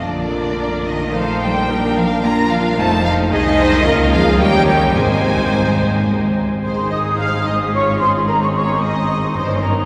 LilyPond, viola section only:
\new Staff \with { instrumentName = "Viola section" } { \time 3/4 \key bes \major \tempo 4 = 110 << { r4 bes'4 c''4 | bes'4 f'2 | \key aes \major aes'8 c''8 bes'8 aes'8 g'4 | c''2~ c''8 r8 |
aes'2 f'4 | ees'2. | } \\ { r2. | r2. | r2. | r2. |
ees'2 des'4 | c'2 des'4 | } >> }